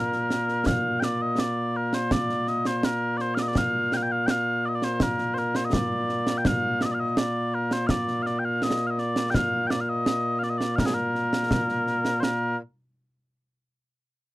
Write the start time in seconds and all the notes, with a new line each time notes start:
Already playing: A#2 A#3 A#4
0.12 snare
0.30 snare
0.49 snare
0.66 F5, concert bass drum, snare
1.00 G5, snare
1.04 D5
1.22 D#5
1.38 D5, snare
1.76 A#4
1.93 C5, snare
2.11 D5, concert bass drum, snare
2.29 snare
2.47 D#5, snare
2.65 C5, snare
2.77 C5
2.83 A#4, snare
3.17 D5, snare
3.21 C5
3.35 F5, snare
3.39 D5 D#5
3.48 D5
3.55 F5, concert bass drum, snare
3.92 G5, snare
3.96 F5
4.02 G5
4.12 F5
4.26 F5 G5, snare
4.66 D5 D#5
4.75 D5
4.82 C5, snare
4.93 C5
5.00 A#4, concert bass drum, snare
5.18 snare
5.34 C5, snare
5.38 A#4
5.55 C5, snare
5.65 D#5
5.73 D5, concert bass drum, snare
6.09 snare
6.27 snare
6.38 G5
6.45 F5, concert bass drum, snare
6.81 D5 D#5, snare
6.91 D5 F5
7.00 D#5
7.09 D#5
7.17 D5, snare
7.55 A#4
7.71 C5, snare
7.87 D5 F5, concert bass drum, snare
8.08 snare
8.22 D5 F5, snare
8.39 G5
8.45 F5
8.62 D#5, snare
8.87 D#5 F5
8.98 D5, snare
9.16 snare
9.30 G5
9.34 F5, concert bass drum, snare
9.67 D5 G5, snare
9.81 F5
9.89 D#5
10.06 snare
10.39 F5, snare
10.44 D5
10.49 D#5
10.58 D5, snare
10.76 A#4 F5, concert bass drum, snare
10.86 G#4
10.94 A#4
11.15 snare
11.33 snare
11.51 concert bass drum, snare
11.69 snare
11.87 snare
12.05 snare
12.20 A#4 C5, snare